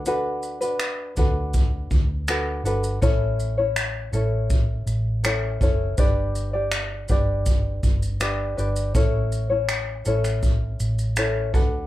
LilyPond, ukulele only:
\new Staff \with { instrumentName = "Ukulele" } { \time 4/4 \key a \mixolydian \tempo 4 = 81 <d' fis' a' b'>8. <d' fis' b'>8. <d' fis' a' b'>4. <d' fis' a' b'>8 <d' fis' a' b'>8 | <cis' e' a' cis''>8. <cis' e' cis''>8. <cis' e' a' cis''>4. <cis' e' a' cis''>8 <cis' e' a' cis''>8 | <d' g' b' d''>8. <d' g' d''>8. <d' g' b' d''>4. <d' g' b' d''>8 <d' g' b' d''>8 | <cis' e' a' cis''>8. <cis' e' cis''>8. <cis' e' a' cis''>4. <cis' e' a' cis''>8 <d' fis' a' b'>8 | }